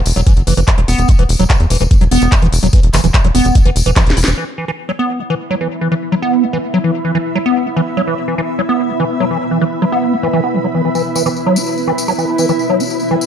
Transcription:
0.06 analog synth bass E1, open hi-hat, tambourine
0.16 analog synth bass E1, acid bass F#3, closed hi-hat, tambourine
0.27 acid bass E3, kick, closed hi-hat, tambourine
0.37 analog synth bass F#1, closed hi-hat
0.47 analog synth bass F#1, acid bass E3, open hi-hat, tambourine
0.57 analog synth bass F#1, acid bass E3, closed hi-hat, tambourine
0.67 kick, clap, closed hi-hat, tambourine
0.78 analog synth bass E1, acid bass F#3, closed hi-hat
0.88 analog synth bass E1, acid bass B3, open hi-hat, tambourine
0.98 analog synth bass E1, closed hi-hat, tambourine
1.08 acid bass F#3, kick, closed hi-hat, tambourine
1.19 analog synth bass E1, acid bass E3, closed hi-hat
1.29 analog synth bass E1, open hi-hat, tambourine
1.39 analog synth bass E1, acid bass F#3, closed hi-hat, tambourine
1.50 acid bass E3, kick, clap, closed hi-hat, tambourine
1.60 analog synth bass E2, closed hi-hat
1.70 analog synth bass E1, acid bass E3, open hi-hat, tambourine
1.81 analog synth bass E1, acid bass E3, closed hi-hat, tambourine
1.91 kick, closed hi-hat, tambourine
2.01 analog synth bass E1, acid bass F#3, closed hi-hat
2.11 analog synth bass E1, acid bass B3, open hi-hat, tambourine
2.21 analog synth bass E1, closed hi-hat, tambourine
2.32 acid bass F#3, kick, clap, closed hi-hat, tambourine
2.42 analog synth bass E1, acid bass E3, closed hi-hat
2.53 analog synth bass E1, open hi-hat, tambourine
2.63 analog synth bass E1, acid bass F#3, closed hi-hat, tambourine
2.73 acid bass E3, kick, closed hi-hat, tambourine
2.83 analog synth bass E1, closed hi-hat
2.93 analog synth bass F#1, acid bass E3, clap, open hi-hat, tambourine
3.04 analog synth bass E1, acid bass E3, closed hi-hat, tambourine
3.14 kick, clap, closed hi-hat
3.24 analog synth bass E1, acid bass F#3, closed hi-hat
3.35 analog synth bass E1, acid bass B3, open hi-hat, tambourine
3.45 analog synth bass E1, closed hi-hat, tambourine
3.55 acid bass F#3, kick, closed hi-hat, tambourine
3.66 analog synth bass F#1, acid bass E3, closed hi-hat
3.76 analog synth bass E1, open hi-hat, tambourine
3.86 analog synth bass E1, acid bass E3, closed hi-hat, tambourine
3.96 acid bass E3, kick, snare, clap, closed hi-hat
4.07 analog synth bass E1, snare, closed hi-hat
4.17 analog synth bass E1, acid bass E4, open hi-hat, tambourine
4.24 analog synth bass E1, acid bass E3, snare, closed hi-hat, tambourine
4.37 acid bass E3, ambient pad B3
4.54 ambient pad E4
4.58 acid bass E3
4.67 acid bass E3, ambient pad B5
4.71 ambient pad E5
4.89 acid bass F#3
4.99 acid bass B3
5.20 acid bass F#3
5.30 acid bass E3
5.51 acid bass F#3
5.61 acid bass E3
5.81 acid bass E3
5.92 acid bass E3
6.12 acid bass F#3
6.22 acid bass B3
6.43 acid bass F#3
6.53 acid bass E3
6.74 acid bass F#3
6.84 acid bass E3
7.05 acid bass E3
7.15 acid bass E3
7.35 acid bass F#3
7.46 acid bass B3
7.66 acid bass F#3
7.77 acid bass E3
7.97 acid bass F#3
8.07 acid bass E3
8.28 acid bass E3
8.38 acid bass E3
8.59 acid bass F#3
8.69 acid bass B3
8.90 acid bass F#3
9.00 acid bass E3
9.20 acid bass F#3
9.31 acid bass E3
9.51 acid bass E3
9.61 acid bass E3
9.82 acid bass F#3
9.92 acid bass B3
10.13 acid bass F#3
10.23 acid bass E3
10.33 acid bass E3
10.44 acid bass B3
10.54 acid bass E3
10.64 acid bass F#3
10.74 acid bass E3
10.85 acid bass E3
10.95 acid bass E3, tambourine
11.15 acid bass E3, tambourine
11.26 acid bass E3, tambourine
11.36 tambourine
11.46 acid bass F#3
11.56 acid bass F#4, tambourine
11.66 tambourine
11.77 acid bass F#3, tambourine
11.88 acid bass E3
11.98 tambourine
12.08 acid bass F#3, tambourine
12.18 acid bass E3, tambourine
12.38 acid bass E3, tambourine
12.49 acid bass E3, tambourine
12.59 tambourine
12.70 acid bass F#3
12.80 acid bass F#4, ambient pad F#5, tambourine
12.90 tambourine
13.00 acid bass F#3, tambourine
13.11 acid bass E3
13.21 tambourine

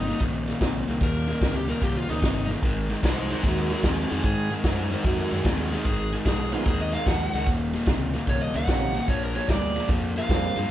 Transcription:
Already playing: fingered electric bass G1, lead electric guitar D#4
0.07 overdriven electric guitar D#2 A#2, snare, ride
0.20 fingered electric bass A#1, overdriven electric guitar D#2 A#2, kick, snare, ride
0.47 overdriven electric guitar D#2 A#2, snare, ride
0.61 fingered electric bass A#1, overdriven electric guitar D#2 C3, kick, snare, ride
0.87 fingered electric bass C2, overdriven electric guitar D#2 A#2, snare, ride
1.01 fingered electric bass D#2, overdriven electric guitar D#2 A#2, lead electric guitar A#4, kick, snare, ride
1.28 overdriven electric guitar D#2 A#2, snare, ride
1.41 fingered electric bass C#2, overdriven electric guitar D#2 C3, kick, snare, ride
1.56 lead electric guitar G4
1.68 overdriven electric guitar D#2 A#2, lead electric guitar A#4, snare, ride
1.82 fingered electric bass C2, overdriven electric guitar D#2 A#2, lead electric guitar G4, kick, snare, ride
1.97 lead electric guitar F4
2.09 fingered electric bass C#2, overdriven electric guitar D#2 A#2, lead electric guitar D#4, snare, ride
2.22 fingered electric bass G1, overdriven electric guitar D#2 C3, kick, snare, ride
2.49 overdriven electric guitar D#2 A#2, snare, ride
2.63 fingered electric bass G#1, overdriven electric guitar G#2 D#3, kick, snare, ride
2.90 overdriven electric guitar G#2 D#3, snare, ride
3.02 fingered electric bass C2, overdriven electric guitar G#2 F3, lead electric guitar D#4 C5, kick, snare, ride
3.18 lead electric guitar D#4 C5
3.30 overdriven electric guitar G#2 D#3, lead electric guitar D#4 C5, snare, ride
3.43 fingered electric bass D#2, overdriven electric guitar G#2 D#3, lead electric guitar F#4 A#4, kick, snare, ride
3.60 lead electric guitar F#4 A#4
3.70 overdriven electric guitar G#2 D#3, lead electric guitar F#4 A#4, snare, ride
3.83 fingered electric bass D#2, overdriven electric guitar G#2 F3, lead electric guitar C4 G#4, kick, snare, ride
4.00 lead electric guitar C4 G#4
4.10 fingered electric bass F2, overdriven electric guitar G#2 D#3, lead electric guitar C4 G#4, snare, ride
4.24 fingered electric bass G#2, overdriven electric guitar G#2 D#3, lead electric guitar G#4, kick, snare, ride
4.50 overdriven electric guitar G#2 D#3, snare, ride
4.64 fingered electric bass F#2, overdriven electric guitar G#2 F3, lead electric guitar D#4 C5, kick, snare, ride
4.76 lead electric guitar D#4 C5
4.91 overdriven electric guitar G#2 D#3, lead electric guitar D#4 C5, snare, ride
5.03 fingered electric bass F2, overdriven electric guitar G#2 D#3, lead electric guitar F#4 A#4, kick, snare, ride
5.18 lead electric guitar F#4 A#4
5.31 fingered electric bass F#2, overdriven electric guitar G#2 D#3, lead electric guitar F#4 A#4, snare, ride
5.45 fingered electric bass D#2, overdriven electric guitar G#2 F3, lead electric guitar C4 G#4, kick, snare, ride
5.58 lead electric guitar C4 G#4
5.72 overdriven electric guitar G#2 D#3, lead electric guitar C4 G#4, snare, ride
5.85 fingered electric bass G#1, overdriven electric guitar G#2 D#3, lead electric guitar G#4, kick, snare, ride
6.12 overdriven electric guitar G#2 D#3, snare, ride
6.25 fingered electric bass B1, overdriven electric guitar G#2 F3, lead electric guitar G#4, kick, snare, ride
6.51 overdriven electric guitar G#2 D#3, upright piano F#3 A#3 B3 D#4 G#4, lead electric guitar F4, snare, ride
6.66 fingered electric bass D#2, overdriven electric guitar G#2 D#3, lead electric guitar G#4, kick, snare, ride
6.81 lead electric guitar D#5
6.92 overdriven electric guitar G#2 D#3, lead electric guitar F5, snare, ride
7.06 fingered electric bass D#2, overdriven electric guitar G#2 F3, lead electric guitar F#5, kick, snare, ride
7.33 fingered electric bass C#2, overdriven electric guitar G#2 D#3, snare, ride
7.46 fingered electric bass D#1, overdriven electric guitar D#2 A#2, kick, snare, ride
7.73 overdriven electric guitar D#2 A#2, snare, ride
7.86 fingered electric bass C#2, overdriven electric guitar D#2 C3, kick, snare, ride
8.13 overdriven electric guitar D#2 A#2, snare, ride
8.27 fingered electric bass C2, overdriven electric guitar D#2 A#2, lead electric guitar C#5, kick, snare, ride
8.41 lead electric guitar D#5
8.54 fingered electric bass C#2, overdriven electric guitar D#2 A#2, lead electric guitar F#5, snare, ride
8.68 fingered electric bass A#1, overdriven electric guitar D#2 C3, upright piano F3 A#3 C#4 D#4 G4, kick, snare, ride
8.94 overdriven electric guitar D#2 A#2, snare, ride
9.08 fingered electric bass A#1, overdriven electric guitar A#2 F3, lead electric guitar C#5, kick, snare, ride
9.24 lead electric guitar A#4
9.35 overdriven electric guitar A#2 F3, lead electric guitar C#5, snare, ride
9.49 fingered electric bass D2, overdriven electric guitar A#2 G3, lead electric guitar D5, kick, snare, ride
9.76 overdriven electric guitar A#2 F3, snare, ride
9.89 fingered electric bass F2, overdriven electric guitar A#2 F3, kick, snare, ride
10.16 overdriven electric guitar A#2 F3, lead electric guitar F5, snare, ride
10.29 fingered electric bass F2, overdriven electric guitar A#2 G3, upright piano F3 A#3 C4 D4 G#4, kick, snare, ride
10.56 fingered electric bass G2, overdriven electric guitar A#2 F3, snare, ride

